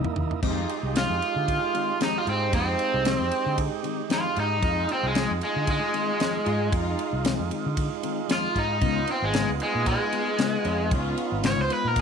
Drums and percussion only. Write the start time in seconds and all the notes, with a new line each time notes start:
0.04 floor tom
0.16 floor tom
0.31 floor tom
0.43 kick, crash
0.69 ride
0.96 snare, ride
1.22 ride
1.48 kick, ride
1.75 ride
2.01 snare, ride
2.27 ride
2.53 kick, ride
2.79 ride
3.05 snare, ride
3.31 ride
3.58 kick, ride
3.84 ride
4.10 snare, ride
4.36 ride
4.62 kick, ride
4.89 ride
5.15 snare, ride
5.41 ride
5.67 kick, ride
5.94 ride
6.20 snare, ride
6.46 ride
6.72 kick, ride
6.99 ride
7.25 snare, ride
7.51 ride
7.77 kick, ride
8.03 ride
8.29 snare, ride
8.56 kick, ride
8.81 kick, ride
9.07 ride
9.33 snare, ride
9.60 ride
9.86 kick, ride
10.13 ride
10.38 snare, ride
10.65 ride
10.91 kick, ride
11.17 ride
11.44 snare, ride
11.70 ride
11.96 kick, ride